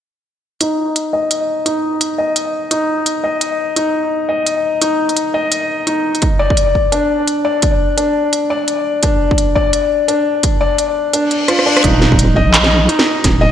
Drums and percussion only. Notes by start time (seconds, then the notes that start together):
0.61 closed hi-hat
0.96 closed hi-hat
1.31 closed hi-hat
1.66 closed hi-hat
2.01 closed hi-hat
2.36 closed hi-hat
2.71 closed hi-hat
3.06 closed hi-hat
3.41 closed hi-hat
3.76 closed hi-hat
4.46 closed hi-hat
4.82 closed hi-hat
5.09 closed hi-hat
5.17 closed hi-hat
5.52 closed hi-hat
5.87 closed hi-hat
6.15 closed hi-hat
6.22 kick, closed hi-hat
6.50 kick
6.57 closed hi-hat
6.75 kick
6.92 closed hi-hat
7.28 closed hi-hat
7.62 kick, closed hi-hat
7.98 closed hi-hat
8.33 closed hi-hat
8.68 closed hi-hat
9.03 kick, closed hi-hat
9.31 kick
9.38 closed hi-hat
9.56 kick
9.73 closed hi-hat
10.08 closed hi-hat
10.43 kick, closed hi-hat
10.78 closed hi-hat
11.13 closed hi-hat
11.31 closed hi-hat
11.48 cross-stick, closed hi-hat
11.59 cross-stick
11.77 cross-stick, closed hi-hat
11.84 kick, closed hi-hat
12.02 snare
12.12 kick
12.19 closed hi-hat
12.37 kick
12.54 clap, closed hi-hat
12.64 snare
12.89 closed hi-hat
12.99 snare
13.24 kick, snare, closed hi-hat